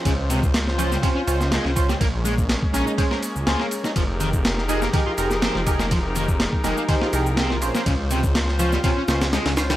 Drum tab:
RD |x-x-x-x-x-x-x-x-|x-x-x-x-x-x-x-x-|x-x-x-x-x-x-x-x-|x-x-x-x-x-x-x-x-|
SH |x-xxx-xxx-xxx-xx|x-xxx-xxx-xxx-xx|x-xxx-xxx-xxx-xx|x-xxx-xxx-xxx-xx|
SD |----oo-o---ooo-o|----o-o--o--oo-o|----oo-o---ooo-o|----o-o--o--oo-o|
BD |o--o----o-----o-|o--o-o--o-------|o--o----o-----o-|o--o-o--o-------|

RD |x-x-x-x-x-xxxxxx|
SH |x-xxx-xxx-xxx-xx|
SD |----oo-o--oooooo|
BD |o--o----o-------|